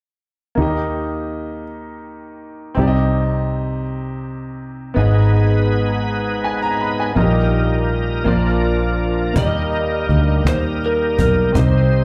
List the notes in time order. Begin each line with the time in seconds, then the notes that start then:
0.55 D#2 D#3 A#3 D#4
0.60 G4 D#5
2.75 C2 C3 C4 D#4
2.79 G4 D5
2.87 D#5
4.94 G#1 G#2 G#3 B3 D#4 B4
4.98 G#4 D#5
6.44 G#5
6.62 A#5
6.81 B5
7.00 G#5
7.15 A#1 A#2 G3 A#3 D#4 F4 A#4 D#5
7.23 G4
8.24 A#1 A#2 F3 A#3 C4 D4 F4 A#4 D5
8.33 D4
9.33 D#2 F#3 G3 A#3 D#4 A#4, cajon bass
9.38 G4 D#5
9.43 G3
9.72 cajon slap
10.09 D2, cajon slap
10.45 D#2 C5, cajon slap
10.82 A#4, cajon slap
11.19 B1 A#4, cajon bass
11.52 C2 C3 G3 C4 D#4 C5, cajon bass
11.57 G4 C5 D#5
11.92 cajon slap